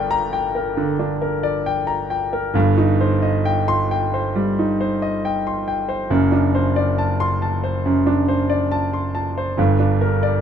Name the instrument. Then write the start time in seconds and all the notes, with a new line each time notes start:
grand piano
Already playing: G1 G2 D4 A#4 D5 G5
0.11 A#5
0.33 G5
0.55 A#4
0.77 D3
0.99 D4
1.22 A#4
1.43 D5
1.66 G5
1.87 A#5
2.10 G5
2.33 A#4
2.54 G1 G2
2.78 D#4
3.01 C5
3.22 D#5
3.45 G5
3.68 C6
3.91 G5
4.14 C5
4.35 G3
4.59 D#4
4.81 C5
5.02 D#5
5.25 G5
5.47 C6
5.68 G5
5.89 C5
6.10 F#1 F#2
6.32 D4
6.55 C5
6.76 D5
6.98 A5
7.20 C6
7.42 A5
7.64 C5
7.86 F#2
8.07 D4
8.28 C5
8.50 D5
8.72 A5
8.93 C6
9.15 A5
9.38 C5
9.57 G1 G2
9.79 D4
10.01 A#4
10.23 D5